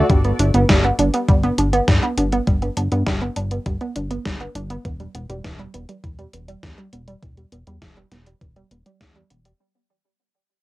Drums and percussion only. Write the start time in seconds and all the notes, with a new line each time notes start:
0.10 kick, closed hi-hat
0.24 closed hi-hat
0.39 closed hi-hat
0.54 closed hi-hat
0.69 kick, snare, closed hi-hat
0.84 closed hi-hat
0.99 closed hi-hat
1.14 closed hi-hat
1.28 kick, closed hi-hat
1.43 closed hi-hat
1.58 closed hi-hat
1.73 closed hi-hat
1.88 kick, snare, closed hi-hat
2.03 closed hi-hat
2.18 closed hi-hat
2.32 closed hi-hat
2.47 kick, closed hi-hat
2.62 closed hi-hat
2.77 closed hi-hat
2.92 closed hi-hat
3.07 kick, snare, closed hi-hat
3.21 closed hi-hat
3.36 closed hi-hat
3.51 closed hi-hat
3.66 kick, closed hi-hat
3.81 closed hi-hat
3.96 closed hi-hat
4.11 closed hi-hat
4.25 kick, snare, closed hi-hat
4.40 closed hi-hat
4.55 closed hi-hat
4.70 closed hi-hat
4.85 kick, closed hi-hat
5.00 closed hi-hat
5.15 closed hi-hat
5.30 closed hi-hat
5.44 kick, snare, closed hi-hat
5.59 closed hi-hat
5.74 closed hi-hat
5.89 closed hi-hat
6.04 kick, closed hi-hat
6.19 closed hi-hat
6.33 closed hi-hat
6.48 closed hi-hat
6.63 kick, snare, closed hi-hat
6.78 closed hi-hat
6.93 closed hi-hat
7.08 closed hi-hat
7.22 kick, closed hi-hat
7.37 closed hi-hat
7.52 closed hi-hat
7.67 closed hi-hat
7.82 kick, snare, closed hi-hat
7.97 closed hi-hat
8.12 snare, closed hi-hat
8.27 closed hi-hat
8.41 kick, closed hi-hat
8.56 closed hi-hat
8.71 closed hi-hat
8.86 closed hi-hat
9.01 kick, snare, closed hi-hat
9.16 closed hi-hat
9.30 closed hi-hat
9.45 closed hi-hat